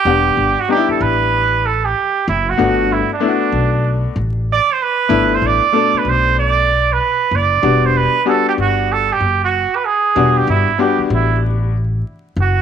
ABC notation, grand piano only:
X:1
M:4/4
L:1/16
Q:"Swing 16ths" 1/4=95
K:Em
V:1 name="Grand piano"
[G,B,Df]3 z [G,B,D^DE]6 z6 | [A,B,DF]3 z [A,B,DEF]6 z6 | [A,B,DE]3 z [B,,A,DA]6 z6 | [G,B,DF]3 z [G,B,DF]6 z6 |
[G,B,DF]3 z [G,B,DF]6 z6 |]